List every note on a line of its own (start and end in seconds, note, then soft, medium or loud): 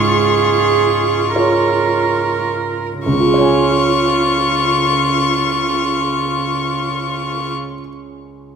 0.00 1.32 G#2 soft
0.00 1.36 F4 soft
0.00 2.75 F4 soft
0.00 1.36 G#4 medium
0.00 1.36 G#4 soft
0.00 1.36 C#5 soft
0.00 2.49 C#6 medium
1.36 3.02 F4 soft
1.36 3.02 G#4 soft
1.36 3.03 A#4 medium
1.36 3.02 C#5 soft
3.06 7.52 C#2 soft
3.06 7.53 C#3 soft
3.06 7.52 F4 soft
3.06 7.53 C#6 medium
3.13 7.59 C#3 soft
3.20 7.66 F4 soft
3.27 7.73 G#4 soft
3.34 7.80 C#5 soft
3.41 7.87 G#5 soft